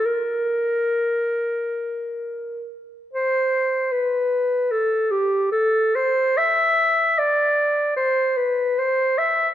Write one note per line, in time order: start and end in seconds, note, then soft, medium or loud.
0.05 2.74 A#4 medium
3.13 3.94 C5 medium
3.92 4.73 B4 medium
4.72 5.13 A4 medium
5.11 5.51 G4 medium
5.52 5.97 A4 medium
5.95 6.39 C5 medium
6.38 7.20 E5 medium
7.18 7.96 D5 medium
7.96 8.38 C5 medium
8.37 8.80 B4 medium
8.79 9.20 C5 medium
9.18 9.49 E5 medium